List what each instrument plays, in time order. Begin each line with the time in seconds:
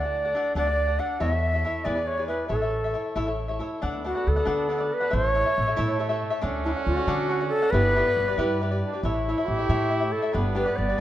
Already playing: upright bass D2, shakuhachi D5
0.03 cavaquinho A4 D5 F#5
0.25 cavaquinho A4 D5 F#5
0.35 cavaquinho D4 A4 D5 F#5
0.55 upright bass D2, cavaquinho D4 A4 D5 F#5, shakuhachi D5
0.67 cavaquinho A4 D5 F#5
0.87 cavaquinho A4 D5 F#5
0.99 cavaquinho D4 A4 D5 F#5, shakuhachi F#5
1.20 upright bass E2, cavaquinho E4 A4 C#5 E5, shakuhachi D#5
1.31 cavaquinho A4 C#5 E5, shakuhachi E5
1.54 cavaquinho A4 C#5 E5
1.64 cavaquinho E4 A4 C#5 E5
1.84 upright bass E2, cavaquinho E4 G#4 B4 D5, shakuhachi D5
1.95 cavaquinho G#4 B4 D5
2.07 shakuhachi C#5
2.17 cavaquinho G#4 B4 D5
2.27 cavaquinho E4 G#4 B4 D5, shakuhachi B4
2.48 upright bass A1, cavaquinho E4 A4 C#5 E5, shakuhachi A4
2.62 cavaquinho A4 C#5 E5
2.84 cavaquinho A4 C#5 E5
2.94 cavaquinho E4 A4 C#5 E5
3.16 upright bass A1, cavaquinho E4 A4 C#5 E5
3.26 cavaquinho A4 C#5 E5
3.48 cavaquinho A4 C#5 E5
3.59 cavaquinho E4 A4 C#5 E5
3.82 upright bass D2, trumpet B3, cavaquinho D4 A4 D5 F#5
4.04 cavaquinho D4 A4 D5 F#5, shakuhachi F#4
4.15 cavaquinho A4 D5 F#5
4.27 upright bass D2, shakuhachi A4
4.36 cavaquinho A4 D5 F#5
4.45 upright bass D3, cavaquinho D4 A4 D5 F#5
4.69 cavaquinho D4 A4 D5 F#5
4.78 cavaquinho A4 D5 F#5
4.93 shakuhachi B4
5.00 cavaquinho A4 D5 F#5
5.10 upright bass A1, trumpet A3, cavaquinho E4 A4 C#5 E5
5.15 shakuhachi C5
5.27 shakuhachi C#5
5.34 cavaquinho E4 A4 C#5 E5
5.46 cavaquinho A4 C#5 E5
5.58 upright bass A1
5.68 cavaquinho A4 C#5 E5
5.77 upright bass A2, cavaquinho E4 A4 C#5 E5
5.99 cavaquinho E4 A4 C#5 E5
6.09 cavaquinho A4 C#5 E5
6.30 cavaquinho A4 C#5 E5
6.41 upright bass D2, trumpet C#4, cavaquinho D4 A4 D5 F#5
6.64 cavaquinho D4 A4 D5 F#5, shakuhachi E4
6.76 cavaquinho A4 D5 F#5
6.86 upright bass D2, shakuhachi F#4
6.97 cavaquinho A4 D5 F#5
7.07 upright bass D3, cavaquinho D4 A4 D5 F#5
7.29 cavaquinho D4 A4 D5 F#5
7.41 cavaquinho A4 D5 F#5
7.48 shakuhachi A4
7.62 cavaquinho A4 D5 F#5
7.70 upright bass G1, trumpet B3, cavaquinho E4 G4 B4, shakuhachi B4
7.74 cavaquinho D5
7.96 cavaquinho E4 G4 B4 D5
8.07 cavaquinho G4 B4 D5
8.17 upright bass G1
8.28 cavaquinho G4 B4 D5
8.38 upright bass G2, cavaquinho E4 G4 B4 D5
8.61 cavaquinho E4 G4 B4 D5
8.71 cavaquinho G4 B4 D5
8.82 trumpet D4
8.93 cavaquinho G4 B4 D5
9.03 upright bass A1, trumpet E4, cavaquinho E4 A4 C#5 E5
9.26 shakuhachi E4, cavaquinho E4 A4 C#5 E5
9.38 cavaquinho A4 C#5 E5
9.48 upright bass A1, shakuhachi G4
9.59 cavaquinho A4 C#5 E5
9.69 upright bass A2, cavaquinho E4 A4 C#5 E5
9.90 cavaquinho E4 A4 C#5 E5
10.00 cavaquinho A4 C#5 E5
10.12 shakuhachi A4
10.22 cavaquinho A4 C#5 E5
10.33 upright bass G1, trumpet B3, cavaquinho D4 G4 B4 D5
10.55 cavaquinho D4 G4 B4 D5, shakuhachi B4
10.66 cavaquinho G4 B4 D5
10.76 upright bass G1, shakuhachi D5
10.89 cavaquinho G4 B4 D5